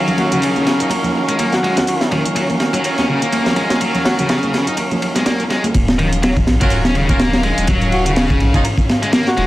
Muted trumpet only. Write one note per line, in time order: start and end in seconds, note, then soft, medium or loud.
0.18 0.27 F#4 medium
0.32 0.39 F#4 medium
1.52 2.20 F#4 medium
4.05 4.14 F#4 medium
4.19 4.26 F#4 medium
7.92 8.01 F#4 medium
8.06 8.13 F#4 medium
9.27 9.47 F#4 medium